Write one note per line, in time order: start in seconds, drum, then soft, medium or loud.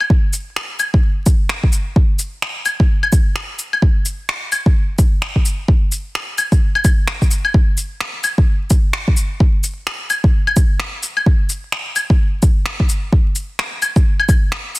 0.01 claves soft
0.10 kick loud
0.33 cabasa medium
0.33 shaker medium
0.56 finger snap loud
0.79 cabasa medium
0.79 claves soft
0.79 shaker medium
0.94 kick loud
1.26 kick loud
1.26 cabasa medium
1.26 shaker medium
1.49 finger snap loud
1.64 kick medium
1.73 cabasa medium
1.73 shaker medium
1.96 kick loud
2.19 cabasa medium
2.19 shaker medium
2.42 finger snap loud
2.65 cabasa medium
2.65 claves medium
2.65 shaker soft
2.80 kick loud
3.03 claves medium
3.12 kick loud
3.12 cabasa medium
3.12 shaker medium
3.36 finger snap loud
3.59 cabasa medium
3.59 shaker medium
3.73 claves medium
3.82 kick loud
4.05 cabasa medium
4.05 shaker medium
4.29 finger snap loud
4.52 cabasa medium
4.52 claves medium
4.52 shaker medium
4.66 kick loud
4.99 kick loud
4.99 cabasa medium
4.99 shaker medium
5.22 finger snap loud
5.36 kick medium
5.45 cabasa medium
5.45 shaker medium
5.68 kick loud
5.92 cabasa medium
5.92 shaker medium
6.15 finger snap loud
6.38 cabasa medium
6.38 claves medium
6.38 shaker medium
6.52 kick loud
6.52 shaker soft
6.75 claves medium
6.85 kick loud
6.85 cabasa medium
6.85 claves soft
6.85 shaker medium
7.08 finger snap loud
7.22 kick medium
7.22 shaker soft
7.31 cabasa medium
7.31 shaker medium
7.45 claves medium
7.54 kick loud
7.77 cabasa medium
7.77 shaker medium
8.00 finger snap loud
8.24 cabasa medium
8.24 claves medium
8.24 shaker medium
8.38 kick loud
8.70 kick loud
8.70 cabasa medium
8.70 shaker medium
8.93 finger snap loud
9.08 kick medium
9.17 cabasa medium
9.17 shaker medium
9.40 kick loud
9.64 cabasa medium
9.64 shaker medium
9.87 finger snap loud
10.10 cabasa medium
10.10 claves medium
10.10 shaker medium
10.24 kick loud
10.47 claves medium
10.56 kick loud
10.56 cabasa medium
10.56 shaker medium
10.80 finger snap loud
11.03 cabasa medium
11.03 shaker medium
11.17 claves medium
11.26 kick loud
11.50 cabasa medium
11.50 shaker medium
11.72 finger snap loud
11.96 cabasa medium
11.96 claves soft
11.96 shaker medium
12.10 kick loud
12.42 kick loud
12.42 cabasa medium
12.42 shaker medium
12.66 finger snap loud
12.80 kick medium
12.89 cabasa medium
12.89 shaker medium
13.12 kick loud
13.35 cabasa medium
13.35 shaker medium
13.59 finger snap loud
13.82 cabasa medium
13.82 claves soft
13.82 shaker medium
13.96 kick loud
13.96 shaker soft
14.20 claves medium
14.29 kick loud
14.29 cabasa medium
14.29 claves soft
14.29 shaker medium
14.52 finger snap loud
14.75 cabasa medium
14.75 shaker medium